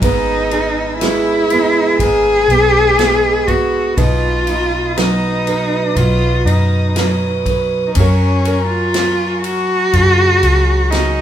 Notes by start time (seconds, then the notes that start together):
Already playing: G#5
0.00 G#1 G#2 B3 D#4 G#4 B4 E6, kick, ride
0.51 G#4, ride
0.98 G#3 E4, snare, ride
1.03 B3
1.50 B3, ride
1.98 G#1 G#2 G#4, kick, ride
2.02 B3
2.48 B1 B3, ride
2.99 G#3 B3, snare, ride
3.47 B3 F#4, kick, ride
3.97 B1 B2 D#4 F4 D#5 D#6, kick, ride
4.47 D#4, ride
4.97 F#3 D#4 B4, snare, ride
5.47 B4, ride
5.96 B1 F#3 D#4 F4, kick, ride
6.45 F#2 D#4, ride
6.96 F#3 B4, snare, ride
7.46 B4, kick, ride
7.87 D#4
7.95 F#2 F#3 C#4 A#4 G#5 A#5 C#6, kick, ride
7.99 F#4 A#4 C#5
8.45 A#4, ride
8.68 F4
8.94 snare, ride
9.43 F#4, ride
9.93 F#2 C#3, kick, ride
10.43 C#2, ride
10.91 D#4 F#4, snare, ride